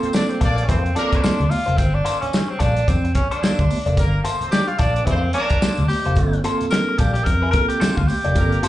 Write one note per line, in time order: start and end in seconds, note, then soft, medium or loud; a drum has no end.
0.00 0.37 A#3 medium
0.00 0.37 C4 medium
0.00 0.37 F4 medium
0.00 0.37 A4 medium
0.00 muted fingered electric bass stroke soft
0.00 closed hi-hat soft
0.04 0.13 C4 medium
0.04 0.13 C5 medium
0.13 0.31 D4 medium
0.13 0.25 D4 medium
0.13 0.25 D5 medium
0.13 muted clean electric guitar stroke soft
0.13 snare loud
0.13 tambourine loud
0.13 high conga medium
0.29 0.43 C4 medium
0.29 muted clean electric guitar stroke soft
0.29 closed hi-hat soft
0.41 0.62 A#1 medium
0.41 0.62 A#3 medium
0.41 0.65 A#3 medium
0.41 0.64 D4 loud
0.41 0.56 F4 medium
0.41 0.56 A4 medium
0.41 0.57 D5 medium
0.41 0.64 D5 loud
0.41 kick loud
0.41 snare soft
0.41 closed hi-hat medium
0.41 tambourine soft
0.57 muted clean electric guitar stroke soft
0.57 closed hi-hat soft
0.64 0.70 C#4 medium
0.68 0.90 F2 loud
0.68 0.90 A#3 medium
0.68 0.98 C4 medium
0.68 0.79 C4 medium
0.68 0.84 F4 medium
0.68 0.84 A4 medium
0.68 0.83 C5 medium
0.68 0.79 C5 medium
0.68 kick loud
0.68 closed hi-hat medium
0.68 tambourine soft
0.68 muted conga medium
0.85 muted clean electric guitar stroke medium
0.85 closed hi-hat soft
0.95 1.13 A#3 medium
0.95 1.35 A#3 medium
0.95 1.19 A#3 medium
0.95 1.35 C4 medium
0.95 1.52 D4 loud
0.95 1.11 F4 medium
0.95 1.35 F4 medium
0.95 1.11 A4 medium
0.95 1.36 A4 medium
0.95 1.19 A#4 loud
0.95 1.12 D5 medium
0.95 closed hi-hat medium
0.95 tambourine soft
0.95 muted conga medium
1.13 kick loud
1.13 closed hi-hat medium
1.23 1.44 A#3 medium
1.23 1.44 F4 medium
1.23 1.45 A4 medium
1.23 1.45 C5 medium
1.23 muted fingered electric bass stroke soft
1.23 snare loud
1.23 tambourine loud
1.23 high conga medium
1.40 1.48 D2 medium
1.40 closed hi-hat soft
1.50 1.79 F4 loud
1.50 muted clean electric guitar stroke soft
1.50 open hi-hat medium
1.50 tambourine soft
1.50 high conga medium
1.66 1.76 F1 medium
1.66 1.80 A#3 soft
1.66 1.80 F4 medium
1.66 1.80 A4 medium
1.66 1.79 C5 medium
1.66 closed hi-hat soft
1.78 1.99 G1 loud
1.78 1.96 C4 medium
1.78 kick medium
1.78 closed hi-hat medium
1.78 tambourine soft
1.94 2.20 D4 loud
2.04 2.26 A#3 medium
2.04 2.26 F4 medium
2.04 2.26 A4 medium
2.04 2.26 C5 medium
2.04 closed hi-hat loud
2.04 tambourine medium
2.21 2.51 C#4 medium
2.21 muted fingered electric bass stroke soft
2.21 closed hi-hat soft
2.32 muted clean electric guitar stroke soft
2.32 snare loud
2.32 tambourine medium
2.32 high conga medium
2.48 2.62 C4 medium
2.48 muted clean electric guitar stroke soft
2.58 2.81 A#1 loud
2.58 2.80 A#3 medium
2.58 2.90 D4 loud
2.58 2.75 F4 medium
2.58 2.75 A4 medium
2.58 2.75 D5 medium
2.58 kick medium
2.58 closed hi-hat medium
2.58 tambourine medium
2.58 low conga medium
2.76 muted clean electric guitar stroke soft
2.76 closed hi-hat soft
2.87 3.09 F2 loud
2.87 3.14 C4 medium
2.87 muted clean electric guitar stroke soft
2.87 kick loud
2.87 closed hi-hat medium
2.87 tambourine soft
2.87 muted conga medium
3.04 muted clean electric guitar stroke soft
3.04 closed hi-hat soft
3.15 3.29 C#4 medium
3.15 kick loud
3.15 closed hi-hat medium
3.15 tambourine soft
3.15 muted conga medium
3.30 3.41 A#3 medium
3.30 4.09 D4 medium
3.30 3.41 F4 medium
3.30 3.41 A4 medium
3.30 3.42 C5 medium
3.30 closed hi-hat medium
3.42 3.63 A#3 medium
3.42 3.63 F4 medium
3.42 3.63 A4 medium
3.42 3.64 C5 medium
3.42 muted fingered electric bass stroke soft
3.42 snare loud
3.42 tambourine loud
3.42 high conga medium
3.59 3.67 D2 medium
3.59 kick loud
3.59 closed hi-hat soft
3.70 muted clean electric guitar stroke soft
3.70 open hi-hat medium
3.70 tambourine soft
3.70 high conga medium
3.86 3.95 F1 medium
3.86 4.00 A#3 medium
3.86 3.99 F4 medium
3.86 3.99 A4 medium
3.86 3.99 D5 medium
3.86 closed hi-hat soft
3.97 4.18 G1 loud
3.97 4.20 A#3 loud
3.97 4.20 A#4 loud
3.97 kick loud
3.97 closed hi-hat medium
3.97 tambourine medium
4.24 4.45 A#3 medium
4.24 4.45 F4 medium
4.24 4.46 A4 medium
4.24 4.46 C5 loud
4.24 closed hi-hat medium
4.24 tambourine medium
4.41 4.51 C4 medium
4.41 4.51 C5 medium
4.41 muted fingered electric bass stroke soft
4.41 closed hi-hat soft
4.51 4.63 D4 medium
4.51 4.69 G4 loud
4.51 4.63 D5 medium
4.51 muted clean electric guitar stroke medium
4.51 snare loud
4.51 tambourine medium
4.51 high conga medium
4.67 4.81 F4 loud
4.67 muted clean electric guitar stroke soft
4.67 closed hi-hat soft
4.79 5.00 A#1 loud
4.79 5.00 A#3 medium
4.79 5.07 D4 loud
4.79 5.02 D4 loud
4.79 4.94 F4 medium
4.79 4.94 A4 medium
4.79 4.95 D5 medium
4.79 5.02 D5 loud
4.79 kick loud
4.79 snare soft
4.79 closed hi-hat medium
4.79 tambourine soft
4.79 muted conga soft
4.95 muted clean electric guitar stroke soft
4.95 closed hi-hat soft
5.05 5.28 F2 loud
5.05 5.28 A#3 medium
5.05 5.33 C4 medium
5.05 5.18 C4 medium
5.05 5.23 F4 medium
5.05 5.23 A4 medium
5.05 5.22 C5 medium
5.05 5.18 C5 medium
5.05 kick medium
5.05 closed hi-hat medium
5.05 tambourine soft
5.05 muted conga medium
5.23 muted clean electric guitar stroke soft
5.33 5.52 A#3 medium
5.33 5.57 A#3 loud
5.33 5.85 D4 loud
5.33 5.51 F4 medium
5.33 5.51 A4 medium
5.33 5.57 A#4 loud
5.33 5.51 D5 medium
5.33 closed hi-hat medium
5.33 tambourine soft
5.33 muted conga medium
5.50 muted clean electric guitar stroke soft
5.50 kick loud
5.50 closed hi-hat medium
5.61 5.82 A#3 medium
5.61 5.83 F4 medium
5.61 5.83 A4 medium
5.61 5.83 C5 medium
5.61 muted fingered electric bass stroke soft
5.61 snare loud
5.61 tambourine loud
5.61 high conga medium
5.77 5.87 D2 medium
5.77 closed hi-hat soft
5.88 6.40 G4 medium
5.88 muted clean electric guitar stroke soft
5.88 open hi-hat medium
5.88 tambourine medium
5.88 high conga medium
6.05 6.14 F1 medium
6.05 6.18 A#3 soft
6.05 6.18 F4 medium
6.05 6.18 A4 medium
6.05 6.18 C5 medium
6.05 closed hi-hat soft
6.16 6.38 G1 loud
6.16 6.31 A#3 medium
6.16 6.31 C4 medium
6.16 6.32 F4 medium
6.16 6.32 A4 medium
6.16 kick medium
6.16 closed hi-hat medium
6.16 tambourine soft
6.33 closed hi-hat soft
6.43 6.94 A#3 medium
6.43 6.65 A#3 medium
6.43 6.95 C4 medium
6.43 6.95 F4 medium
6.43 6.65 F4 medium
6.43 6.95 A4 medium
6.43 6.65 A4 medium
6.43 6.65 C5 medium
6.43 closed hi-hat medium
6.43 tambourine medium
6.61 muted fingered electric bass stroke soft
6.61 closed hi-hat soft
6.71 7.00 A#4 loud
6.71 muted clean electric guitar stroke soft
6.71 snare loud
6.71 tambourine loud
6.71 high conga medium
6.88 muted clean electric guitar stroke soft
6.98 7.20 A#1 medium
6.98 7.20 A#3 medium
6.98 7.16 F4 medium
6.98 7.13 G4 medium
6.98 7.16 A4 medium
6.98 7.16 D5 medium
6.98 kick loud
6.98 closed hi-hat medium
6.98 tambourine medium
6.98 muted conga soft
6.98 low conga medium
7.13 7.26 G4 loud
7.13 muted clean electric guitar stroke medium
7.13 closed hi-hat soft
7.24 7.47 F2 loud
7.24 7.50 A#4 loud
7.24 muted clean electric guitar stroke soft
7.24 kick medium
7.24 closed hi-hat medium
7.24 tambourine soft
7.24 muted conga medium
7.42 7.52 A#3 medium
7.42 7.52 F4 medium
7.42 7.53 A4 medium
7.42 7.53 C5 medium
7.51 7.93 A#3 medium
7.51 7.93 C4 medium
7.51 7.93 F4 medium
7.51 7.93 A4 medium
7.51 7.68 A#4 loud
7.51 kick loud
7.51 closed hi-hat medium
7.51 muted conga medium
7.68 7.97 G4 medium
7.68 muted clean electric guitar stroke medium
7.68 closed hi-hat medium
7.80 8.01 A#3 medium
7.80 8.01 F4 medium
7.80 8.01 A4 medium
7.80 8.02 C5 medium
7.80 muted fingered electric bass stroke soft
7.80 snare loud
7.80 tambourine loud
7.80 high conga medium
7.96 8.06 D2 medium
7.96 8.09 F4 medium
7.96 kick medium
8.07 8.68 G4 medium
8.07 muted clean electric guitar stroke soft
8.07 open hi-hat medium
8.07 tambourine medium
8.07 high conga medium
8.24 8.34 F1 medium
8.24 8.38 A#3 medium
8.24 8.37 F4 medium
8.24 8.37 A4 medium
8.24 8.37 D5 medium
8.24 closed hi-hat soft
8.35 8.57 G1 loud
8.35 8.50 A#3 medium
8.35 8.58 A#3 medium
8.35 8.50 C4 medium
8.35 8.51 F4 medium
8.35 8.51 A4 medium
8.35 8.58 A#4 loud
8.35 kick loud
8.35 closed hi-hat medium
8.35 tambourine soft
8.52 closed hi-hat soft
8.62 8.68 A#3 medium
8.62 8.68 C4 medium
8.62 8.68 F4 medium
8.62 8.68 G4 medium
8.62 8.68 A4 medium
8.62 8.68 C5 medium
8.62 closed hi-hat loud
8.62 tambourine medium